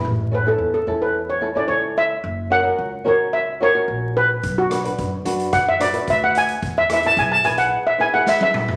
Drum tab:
HH |----------------|----------------|x-xxx-xxx-xxx-xx|x-xxx-xx--------|
SD |----------------|----------------|--r-----r-r-----|--r---------o---|
T1 |----------------|----------------|----------------|-------------o--|
T2 |----------------|----------------|----------------|--------------o-|
FT |----------------|----------------|----------------|---------------o|
BD |----------------|----------------|o---o---o---o---|o---o-----------|